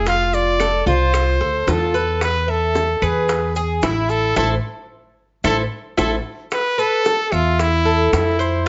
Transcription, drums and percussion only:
0.06 high bongo, maracas
0.33 high bongo, maracas
0.60 high bongo, claves, maracas
0.87 high bongo, maracas
1.14 high bongo, claves, maracas
1.41 high bongo
1.68 high bongo, low bongo, maracas
1.95 maracas
2.21 high bongo, claves, maracas
2.75 high bongo, maracas
3.02 claves, maracas
3.29 high bongo, maracas
3.56 maracas
3.82 high bongo, low bongo, claves, maracas
4.10 maracas
4.36 low bongo, claves, maracas
5.44 low bongo, claves, maracas
5.98 low bongo, claves, maracas
6.51 high bongo, claves, maracas
6.79 maracas
7.05 high bongo, maracas
7.32 claves, maracas
7.59 high bongo, maracas
8.13 high bongo, low bongo, claves, maracas
8.40 maracas

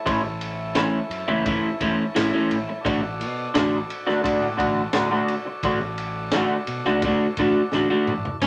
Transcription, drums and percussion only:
0.06 kick, ride
0.41 ride
0.75 snare, ride
1.11 ride
1.46 kick, ride
1.81 kick, ride
2.16 snare, ride
2.51 ride
2.85 kick, ride
3.21 ride
3.55 snare, ride
3.90 ride
4.08 snare
4.24 kick, ride
4.59 kick, ride
4.93 snare, ride
5.28 ride
5.63 kick, ride
5.98 ride
6.32 snare, ride
6.67 ride
6.84 snare
7.02 kick, ride
7.37 kick, ride
7.72 snare
8.07 mid tom
8.25 floor tom
8.41 kick, crash

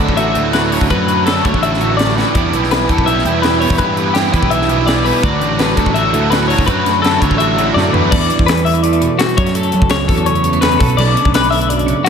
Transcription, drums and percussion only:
0.09 kick
0.17 closed hi-hat
0.35 closed hi-hat
0.53 snare, closed hi-hat
0.72 open hi-hat
0.81 kick
0.90 kick, closed hi-hat
1.08 closed hi-hat
1.27 snare, closed hi-hat
1.45 kick, closed hi-hat
1.54 kick
1.63 closed hi-hat
1.74 snare
1.81 closed hi-hat
1.99 snare, closed hi-hat
2.09 snare
2.19 snare
2.35 kick, closed hi-hat
2.53 closed hi-hat
2.64 snare
2.71 snare, closed hi-hat
2.89 kick, closed hi-hat
2.98 kick
3.08 closed hi-hat
3.19 snare
3.26 closed hi-hat
3.43 snare, closed hi-hat
3.62 open hi-hat
3.70 kick
3.78 kick, closed hi-hat
3.97 closed hi-hat
4.15 snare, closed hi-hat
4.26 snare
4.34 kick, closed hi-hat
4.43 kick
4.51 closed hi-hat
4.62 snare
4.69 closed hi-hat
4.88 snare, closed hi-hat
5.06 open hi-hat
5.23 kick, closed hi-hat
5.41 closed hi-hat
5.59 snare, closed hi-hat
5.77 kick, closed hi-hat
5.86 kick
5.96 closed hi-hat
6.14 closed hi-hat
6.32 snare, closed hi-hat
6.50 open hi-hat
6.58 kick
6.68 kick, closed hi-hat
6.86 snare, closed hi-hat
7.04 snare, closed hi-hat
7.22 kick, closed hi-hat
7.31 kick
7.40 closed hi-hat
7.58 closed hi-hat
7.78 snare
7.94 floor tom
8.12 kick, crash
8.30 closed hi-hat
8.39 kick
8.48 snare, closed hi-hat
8.57 closed hi-hat
8.66 open hi-hat
8.75 closed hi-hat
8.84 closed hi-hat
8.93 closed hi-hat
9.02 closed hi-hat
9.19 snare, closed hi-hat
9.29 closed hi-hat
9.38 kick, closed hi-hat
9.47 snare, closed hi-hat
9.55 closed hi-hat
9.63 closed hi-hat
9.72 closed hi-hat
9.82 kick
9.90 snare, closed hi-hat
10.09 kick, open hi-hat
10.17 closed hi-hat
10.26 closed hi-hat
10.35 closed hi-hat
10.44 closed hi-hat
10.53 closed hi-hat
10.62 snare, closed hi-hat
10.71 closed hi-hat
10.80 kick, open hi-hat
10.90 closed hi-hat
10.98 crash
11.17 closed hi-hat
11.25 kick
11.34 snare, closed hi-hat
11.44 closed hi-hat
11.52 open hi-hat
11.62 closed hi-hat
11.70 closed hi-hat
11.79 closed hi-hat
11.88 closed hi-hat

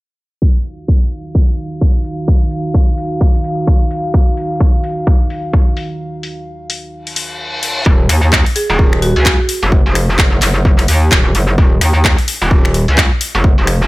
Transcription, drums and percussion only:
0.42 kick
0.65 open hi-hat
0.88 kick
1.12 open hi-hat
1.35 kick
1.58 open hi-hat
1.81 kick
2.05 open hi-hat
2.28 kick
2.51 open hi-hat
2.74 kick
2.98 open hi-hat
3.21 kick
3.35 open hi-hat
3.44 open hi-hat
3.67 kick
3.91 open hi-hat
4.14 kick
4.37 open hi-hat
4.60 kick
4.84 open hi-hat
5.07 kick
5.30 open hi-hat
5.53 kick
5.77 open hi-hat
6.23 open hi-hat
6.70 open hi-hat
7.07 open hi-hat
7.16 open hi-hat
7.63 open hi-hat
7.86 kick
8.09 finger snap, open hi-hat
8.33 kick, clap
8.46 open hi-hat
8.56 open hi-hat
8.79 kick
8.93 finger snap
9.02 open hi-hat
9.26 kick, clap
9.49 open hi-hat
9.72 kick
9.95 finger snap, open hi-hat
10.19 kick, clap
10.42 clap, open hi-hat
10.65 kick
10.79 finger snap, open hi-hat
10.88 open hi-hat
11.12 kick, clap
11.35 open hi-hat
11.58 kick
11.81 finger snap, open hi-hat
12.05 kick, clap
12.18 open hi-hat
12.28 open hi-hat
12.51 kick
12.65 finger snap
12.74 open hi-hat
12.98 kick, clap
13.21 open hi-hat
13.44 kick
13.67 finger snap, open hi-hat

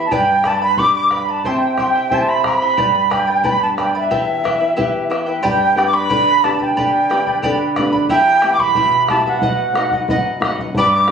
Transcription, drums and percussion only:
0.12 bombo low
0.44 bombo rim, bombo low
0.77 bombo low
1.11 bombo rim, bombo low
1.44 bombo low
1.78 bombo rim, bombo low
2.11 bombo low
2.44 bombo rim, bombo low
2.78 bombo low
3.11 bombo rim, bombo low
3.44 bombo low
3.78 bombo rim, bombo low
4.11 bombo low
4.45 bombo rim, bombo low
4.79 bombo low
5.12 bombo rim
5.45 bombo low
5.79 bombo rim
6.11 bombo low
6.44 bombo rim, bombo low
6.61 bombo low
6.78 bombo low
7.11 bombo rim
7.27 bombo low
7.43 bombo low
7.76 bombo rim, bombo low
7.93 bombo low
8.09 bombo low
8.42 bombo rim
8.59 bombo low
8.75 bombo low
9.09 bombo rim, bombo low
9.25 bombo low
9.42 bombo low
9.75 bombo rim
9.91 bombo low
10.09 bombo low
10.42 bombo rim, bombo low
10.58 bombo low
10.75 bombo low
11.08 bombo rim

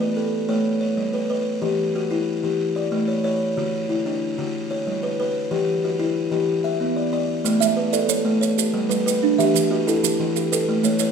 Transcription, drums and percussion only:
7.46 maracas
7.62 maracas
7.93 maracas
8.09 maracas
8.43 maracas
8.58 maracas
8.91 maracas
9.08 maracas
9.40 maracas
9.56 maracas
9.88 maracas
10.04 maracas
10.36 maracas
10.53 maracas
10.84 maracas
10.99 maracas

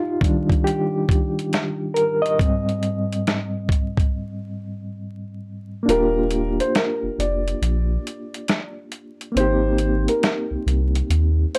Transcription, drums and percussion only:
0.21 kick, closed hi-hat
0.50 kick, closed hi-hat
0.67 closed hi-hat
1.09 kick, closed hi-hat
1.39 closed hi-hat
1.53 snare, closed hi-hat
1.96 closed hi-hat
2.26 closed hi-hat
2.39 kick, closed hi-hat
2.69 closed hi-hat
2.83 closed hi-hat
3.13 closed hi-hat
3.27 snare, closed hi-hat
3.69 kick, closed hi-hat
3.97 kick, closed hi-hat
5.89 closed hi-hat
6.31 closed hi-hat
6.60 closed hi-hat
6.75 snare, closed hi-hat
7.20 closed hi-hat
7.48 closed hi-hat
7.63 closed hi-hat
8.07 closed hi-hat
8.34 closed hi-hat
8.48 snare, closed hi-hat
8.92 closed hi-hat
9.21 closed hi-hat
9.37 closed hi-hat
9.78 closed hi-hat
10.08 closed hi-hat
10.23 snare, closed hi-hat
10.68 closed hi-hat
10.95 closed hi-hat
11.10 closed hi-hat
11.55 closed hi-hat

